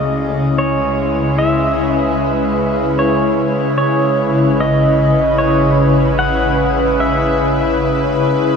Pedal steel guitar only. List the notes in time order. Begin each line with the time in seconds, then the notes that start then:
Already playing: D#5
0.58 C#5
1.39 E5
2.99 C#5
3.78 C#5
4.60 D#5
5.38 C#5
6.19 F#5
7.00 E5